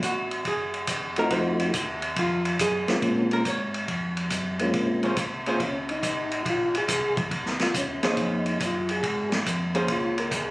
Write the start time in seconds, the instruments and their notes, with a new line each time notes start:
0.02 tonewheel organ G#1, hollow-body jazz guitar F#4, kick, hi-hat pedal, ride
0.31 ride
0.45 tonewheel organ F#1, hollow-body jazz guitar G#4, kick, ride
0.74 ride
0.87 tonewheel organ F1, kick, hi-hat pedal, ride
1.16 tonewheel organ A3 C4 D#4 F4 F#4, hollow-body jazz guitar A#4, ride
1.30 tonewheel organ F2, hollow-body jazz guitar C5, kick, ride
1.59 ride
1.74 tonewheel organ D#2, kick, hi-hat pedal, ride
2.02 ride
2.16 tonewheel organ F2, hollow-body jazz guitar F4, kick, ride
2.45 ride
2.59 tonewheel organ F#2, hollow-body jazz guitar G#4, kick, hi-hat pedal, ride
2.88 tonewheel organ F#2 G#3 A#3 C4 C#4 F4, snare, ride
3.02 tonewheel organ A#2, kick, ride
3.31 hollow-body jazz guitar A#4, ride
3.45 tonewheel organ G#2, hollow-body jazz guitar C#5, kick, hi-hat pedal, ride
3.74 ride
3.88 tonewheel organ F2, kick, ride
4.17 ride
4.30 tonewheel organ F#2, kick, hi-hat pedal, ride
4.59 tonewheel organ G#3 A#3 C4 C#4 F4, ride
4.73 tonewheel organ A#1, kick, ride
5.03 hollow-body jazz guitar A#3 C#4 G#4 C5, ride
5.17 tonewheel organ C2, kick, hi-hat pedal, ride
5.46 hollow-body jazz guitar A#3 C#4 G#4 C5, tonewheel organ F4, ride
5.60 tonewheel organ C#2 C#4, kick, ride
5.89 tonewheel organ D#4, ride
6.03 tonewheel organ A1, kick, hi-hat pedal, ride
6.31 ride
6.45 tonewheel organ A#1, kick, ride
6.50 tonewheel organ F4
6.74 tonewheel organ A#1 G#4, ride
6.88 tonewheel organ C2, kick, hi-hat pedal, ride
7.17 kick, ride
7.31 tonewheel organ C#2, kick, ride
7.46 snare
7.59 tonewheel organ C#2 F4, snare, ride
7.74 tonewheel organ D#2 C#4, kick, hi-hat pedal, ride
8.03 tonewheel organ D#2 D#4, hollow-body jazz guitar A#3 C#4 G#4 C5, snare, ride
8.17 tonewheel organ F2, kick, ride
8.46 ride
8.60 tonewheel organ F#2, kick, hi-hat pedal, ride
8.65 tonewheel organ F4
8.89 tonewheel organ G#4, ride
9.03 tonewheel organ G#2, kick, ride
9.32 snare, ride
9.46 tonewheel organ F2, kick, hi-hat pedal, ride
9.75 hollow-body jazz guitar A#3 C#4 G#4 C5, ride
9.88 tonewheel organ C#2 F4, kick, ride
10.18 tonewheel organ A#4, ride
10.31 tonewheel organ D#2 G#4, kick, hi-hat pedal, ride